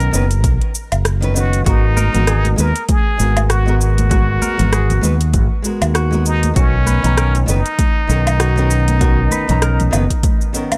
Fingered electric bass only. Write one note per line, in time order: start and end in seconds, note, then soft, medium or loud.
0.14 0.44 F#1 medium
0.44 0.57 B1 medium
0.92 1.61 F#1 medium
1.66 2.08 G#1 loud
2.15 2.53 G#1 medium
2.58 2.72 D#2 medium
3.20 4.37 G#1 loud
4.59 4.98 G#1 medium
5.03 5.35 D#2 medium
5.34 5.47 G#1 loud
5.82 6.51 D#2 medium
6.56 6.98 B1 loud
7.04 7.43 B1 loud
7.48 7.61 F#1 loud
8.09 9.27 B1 loud
9.49 9.88 B1 loud
9.93 10.06 F#1 medium